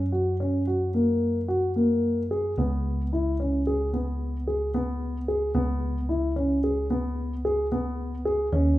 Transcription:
0.00 2.54 F#2 medium
0.12 0.34 F#4 medium
0.40 0.61 C#4 medium
0.67 0.88 F#4 medium
0.94 1.37 A#3 medium
1.48 1.70 F#4 medium
1.76 2.19 A#3 medium
2.31 2.52 G#4 medium
2.58 5.51 C#2 medium
2.58 3.01 B3 medium
3.13 3.34 E4 medium
3.40 3.61 C#4 medium
3.67 3.88 G#4 medium
3.93 4.36 B3 medium
4.47 4.69 G#4 medium
4.74 5.17 B3 medium
5.28 5.49 G#4 medium
5.55 8.48 C#2 medium
5.55 5.97 B3 medium
6.09 6.30 E4 medium
6.36 6.58 C#4 medium
6.64 6.85 G#4 medium
6.90 7.33 B3 medium
7.45 7.66 G#4 medium
7.72 8.14 B3 medium
8.25 8.46 G#4 medium
8.53 8.79 D#2 medium
8.53 8.79 C#4 medium

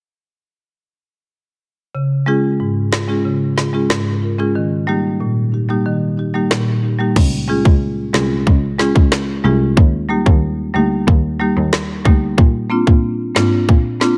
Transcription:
1.95 2.43 C#3 medium
2.26 2.40 G#3 medium
2.26 2.40 C#4 medium
2.26 2.40 F4 medium
2.26 2.41 G#4 medium
2.60 3.08 G#2 medium
2.92 2.99 F4 medium
2.92 2.99 G#4 medium
2.92 snare loud
3.08 3.21 G#3 medium
3.08 3.22 C#4 medium
3.08 3.22 F4 medium
3.08 3.22 G#4 medium
3.25 3.74 C#3 medium
3.57 3.64 F4 medium
3.57 3.65 G#4 medium
3.57 snare medium
3.73 3.86 G#3 medium
3.73 3.87 C#4 medium
3.73 3.87 F4 medium
3.73 3.87 G#4 medium
3.90 4.39 G#2 medium
3.90 cross-stick medium
3.90 snare loud
4.22 4.29 F4 medium
4.22 4.30 A#4 medium
4.38 4.52 G#3 medium
4.38 4.52 C#4 medium
4.38 4.52 F4 medium
4.38 4.53 G#4 medium
4.55 5.04 D#3 medium
4.87 5.01 G3 medium
4.87 5.01 A#3 medium
4.87 5.01 D#4 medium
4.87 5.02 G4 medium
5.20 5.69 A#2 medium
5.52 5.59 D#4 medium
5.52 5.60 G4 medium
5.69 5.82 G3 medium
5.69 5.82 A#3 medium
5.69 5.83 D#4 medium
5.69 5.83 G4 medium
5.86 6.34 D#3 medium
6.17 6.25 D#4 medium
6.17 6.25 G4 loud
6.34 6.47 G3 medium
6.34 6.48 A#3 medium
6.34 6.48 D#4 medium
6.34 6.48 G4 medium
6.51 7.00 A#2 medium
6.51 cross-stick medium
6.51 snare loud
6.83 6.90 D#4 medium
6.83 6.91 G4 medium
6.99 7.13 G3 medium
6.99 7.13 A#3 medium
6.99 7.13 D#4 medium
6.99 7.13 G4 medium
7.16 7.57 C#2 loud
7.16 kick loud
7.16 crash medium
7.48 7.61 G#3 medium
7.48 7.62 C#4 medium
7.48 7.62 F4 medium
7.48 7.62 G#4 loud
7.65 8.06 C#2 medium
7.65 kick medium
8.13 8.41 C2 medium
8.13 8.27 G#3 medium
8.13 8.27 C#4 medium
8.13 8.27 F4 medium
8.13 8.28 G#4 medium
8.13 snare loud
8.47 8.88 C#2 medium
8.47 kick medium
8.78 8.92 G#3 medium
8.78 8.92 C#4 medium
8.78 8.93 F4 medium
8.78 8.93 G#4 medium
8.78 snare medium
8.96 9.37 C#2 medium
8.96 kick medium
9.12 cross-stick medium
9.12 snare loud
9.44 9.72 C2 medium
9.44 9.57 G#3 medium
9.44 9.57 C#4 medium
9.44 9.58 F4 medium
9.44 9.58 G#4 medium
9.77 10.18 D#2 loud
9.77 kick loud
10.09 10.22 G3 medium
10.09 10.23 A#3 medium
10.09 10.23 D#4 medium
10.09 10.23 G4 medium
10.26 10.67 D#2 loud
10.26 kick medium
10.74 11.02 D2 medium
10.74 10.88 G3 medium
10.74 10.88 A#3 medium
10.74 10.88 D#4 medium
10.74 10.89 G4 loud
11.08 11.49 D#2 loud
11.08 kick loud
11.39 11.53 G3 medium
11.39 11.53 A#3 medium
11.39 11.53 D#4 medium
11.39 11.54 G4 medium
11.57 11.98 D#2 medium
11.73 cross-stick medium
11.73 snare loud
12.05 12.33 D2 medium
12.05 12.18 G3 medium
12.05 12.18 A#3 medium
12.05 12.19 D#4 medium
12.05 12.19 G4 loud
12.05 kick medium
12.38 12.79 A#2 loud
12.38 kick loud
12.70 12.83 A#3 medium
12.70 12.84 C4 medium
12.70 12.84 D4 medium
12.70 12.84 F4 medium
12.87 13.28 A#2 medium
12.87 kick medium
13.35 13.63 G#2 medium
13.35 13.48 A#3 medium
13.35 13.49 C4 medium
13.35 13.49 D4 medium
13.35 13.49 F4 loud
13.35 snare loud
13.69 14.10 A#2 medium
13.69 kick medium
14.00 14.14 A#3 medium
14.00 14.14 C4 medium
14.00 14.14 D4 medium
14.00 14.15 F4 medium
14.00 snare medium

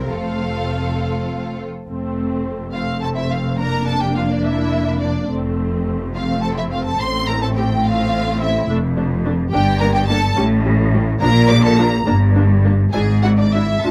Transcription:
0.08 1.67 F1 soft
0.08 1.68 F2 soft
0.08 1.64 A3 soft
0.08 1.65 C4 soft
0.08 1.64 F4 soft
0.08 1.68 A4 soft
0.08 1.55 F5 medium
1.87 5.26 F1 medium
1.87 5.26 F2 medium
1.87 2.70 A3 soft
1.87 2.70 C4 medium
2.72 3.58 A3 soft
2.72 3.58 C4 soft
2.72 2.81 F4 soft
2.72 3.00 F5 medium
3.02 3.08 A4 medium
3.02 3.08 A5 medium
3.16 3.21 E4 soft
3.16 3.30 E5 medium
3.30 3.38 F4 soft
3.30 3.59 F5 medium
3.59 5.30 A#3 soft
3.59 5.30 D4 soft
3.59 3.87 A#4 medium
3.59 3.87 A#5 medium
3.87 4.02 A4 medium
3.87 4.02 A5 medium
4.02 4.07 G4 medium
4.02 4.16 G5 medium
4.16 4.22 F4 soft
4.16 4.30 F5 medium
4.31 4.37 D4 medium
4.31 4.45 D5 medium
4.44 5.01 E4 medium
4.44 5.01 E5 medium
5.00 5.29 D4 soft
5.00 5.29 D5 medium
5.30 6.96 F1 medium
5.30 6.96 F2 medium
5.30 6.13 A3 medium
5.30 6.13 C4 soft
6.15 6.98 A3 medium
6.15 6.98 C4 soft
6.15 6.23 F4 medium
6.15 6.41 F5 medium
6.42 6.56 A4 medium
6.42 6.48 A5 medium
6.56 6.71 E4 medium
6.56 6.63 E5 medium
6.70 6.85 F4 medium
6.70 6.85 F5 medium
6.85 6.99 A4 medium
6.85 6.99 A5 medium
6.99 8.65 A1 medium
6.99 8.65 A2 medium
6.99 7.83 A3 medium
6.99 7.83 C4 medium
6.99 7.07 C5 medium
6.99 7.28 C6 medium
7.27 7.33 A#4 medium
7.27 7.42 A#5 medium
7.42 7.48 A4 medium
7.42 7.48 A5 medium
7.56 7.64 G4 medium
7.56 7.84 G5 medium
7.84 8.67 A3 medium
7.84 8.67 C4 medium
7.84 8.39 F4 medium
7.84 8.41 F5 medium
8.41 8.69 E4 medium
8.41 8.68 E5 medium
8.69 9.43 F1 medium
8.69 9.43 F2 medium
8.69 8.77 A3 medium
8.69 8.77 D4 medium
8.97 9.05 A3 medium
8.97 9.05 D4 medium
9.25 9.33 A3 medium
9.25 9.33 D4 medium
9.52 10.27 G1 medium
9.52 10.27 G2 medium
9.52 9.61 A#3 medium
9.52 9.61 D4 medium
9.52 9.78 G4 medium
9.52 9.79 G5 medium
9.79 9.89 A#3 medium
9.79 9.89 D4 medium
9.79 9.86 A#4 medium
9.79 9.94 A#5 medium
9.94 10.00 G4 medium
9.94 10.08 G5 medium
10.07 10.17 A#3 medium
10.07 10.17 D4 medium
10.07 10.36 A4 medium
10.07 10.36 A5 medium
10.37 11.12 A1 medium
10.37 11.12 A2 medium
10.37 10.45 G3 medium
10.37 10.45 C#4 medium
10.65 10.73 G3 medium
10.65 10.74 C#4 medium
10.94 11.02 G3 medium
10.94 11.02 C#4 medium
11.21 11.97 A#1 medium
11.21 11.97 A#2 medium
11.21 11.29 F3 medium
11.21 11.29 D4 medium
11.21 11.48 A#4 medium
11.21 11.48 A#5 medium
11.49 11.58 F3 medium
11.49 11.58 D4 medium
11.49 11.64 D5 medium
11.49 11.64 D6 loud
11.64 11.78 A4 medium
11.64 11.78 A5 medium
11.78 11.86 F3 medium
11.78 11.86 D4 medium
11.78 11.86 A#4 medium
11.78 12.07 A#5 medium
12.06 12.82 G1 medium
12.06 12.83 G2 medium
12.06 12.14 A#3 medium
12.06 12.14 D4 medium
12.35 12.43 A#3 medium
12.35 12.43 D4 medium
12.64 12.72 A#3 medium
12.64 12.72 D4 medium
12.93 13.73 G#1 medium
12.93 13.73 G#2 medium
12.93 13.01 D4 medium
12.93 13.01 E4 medium
12.93 13.21 G#4 medium
12.93 13.01 G#5 medium
13.23 13.32 D4 soft
13.23 13.32 E4 soft
13.23 13.29 F#4 medium
13.23 13.29 F#5 medium
13.37 13.43 D4 medium
13.37 13.53 D5 medium
13.52 13.62 D4 soft
13.52 13.83 E4 medium
13.52 13.62 E4 soft
13.52 13.84 E5 medium
13.83 13.91 A1 medium
13.83 13.91 A2 medium
13.83 13.91 D4 medium
13.83 13.91 F4 medium
13.83 13.91 A4 medium
13.83 13.91 A5 medium

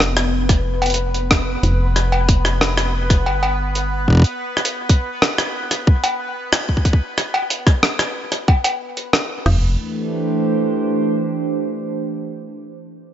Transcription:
0.00 1.57 F1 loud
0.00 9.47 B3 medium
0.00 9.47 B4 medium
0.00 cross-stick loud
0.17 cross-stick medium
0.17 closed hi-hat medium
0.49 kick loud
0.49 cross-stick soft
0.49 closed hi-hat medium
0.82 closed hi-hat soft
0.82 cowbell medium
0.86 closed hi-hat medium
0.90 closed hi-hat medium
0.94 closed hi-hat medium
1.14 closed hi-hat medium
1.31 kick loud
1.31 cross-stick loud
1.63 3.28 F1 medium
1.63 closed hi-hat medium
1.96 cross-stick medium
1.96 closed hi-hat medium
2.12 cowbell medium
2.29 kick loud
2.29 closed hi-hat loud
2.45 cross-stick medium
2.61 cross-stick loud
2.77 cross-stick medium
2.77 closed hi-hat medium
3.10 kick loud
3.10 cross-stick soft
3.10 closed hi-hat medium
3.26 4.18 G1 medium
3.26 cowbell medium
3.43 cowbell medium
3.75 closed hi-hat medium
4.08 kick medium
4.10 kick medium
4.13 kick medium
4.15 kick medium
4.17 kick medium
4.20 kick loud
4.22 kick loud
4.22 closed hi-hat medium
4.57 cross-stick medium
4.65 closed hi-hat medium
4.89 kick loud
4.89 closed hi-hat loud
5.22 cross-stick loud
5.38 cross-stick medium
5.38 closed hi-hat medium
5.71 cross-stick soft
5.71 closed hi-hat medium
5.87 kick loud
6.04 closed hi-hat medium
6.04 cowbell medium
6.53 cross-stick loud
6.53 closed hi-hat medium
6.69 kick medium
6.77 kick medium
6.85 kick medium
6.85 closed hi-hat medium
6.93 kick medium
7.18 cross-stick medium
7.18 closed hi-hat medium
7.34 cowbell medium
7.50 closed hi-hat medium
7.67 kick loud
7.67 cross-stick medium
7.83 cross-stick loud
7.99 cross-stick medium
7.99 closed hi-hat medium
8.32 cross-stick soft
8.32 closed hi-hat medium
8.48 kick loud
8.48 cowbell medium
8.64 closed hi-hat medium
8.64 cowbell medium
8.97 closed hi-hat medium
9.13 cross-stick loud
9.46 9.76 F1 loud
9.46 12.03 E3 medium
9.46 snare loud
9.46 floor tom loud
9.46 crash medium
9.56 12.03 A3 medium
9.65 12.03 D4 medium
9.75 12.03 G4 medium
9.85 12.03 C5 medium

